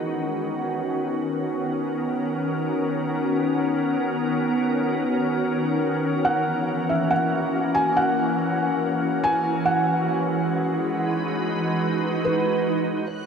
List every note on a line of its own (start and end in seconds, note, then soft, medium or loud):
0.00 6.24 D#3 medium
0.00 6.24 B3 medium
0.00 11.04 C#4 medium
0.00 0.93 D#4 medium
0.00 13.26 F#4 medium
1.51 9.67 A#4 medium
6.25 13.10 E3 medium
6.25 6.91 F#5 medium
6.78 9.67 A#3 medium
6.89 7.11 E5 medium
7.11 7.77 F#5 medium
7.75 7.97 G#5 medium
7.97 9.29 F#5 medium
9.24 9.68 G#5 loud
9.66 12.20 F#5 medium
10.06 13.10 G#3 medium
10.68 13.11 B4 medium
10.93 13.26 D#4 medium
12.25 13.06 B4 medium
13.08 13.26 D#3 medium
13.08 13.26 B3 medium
13.08 13.26 F#4 medium
13.08 13.26 C#5 medium
13.08 13.26 F#6 medium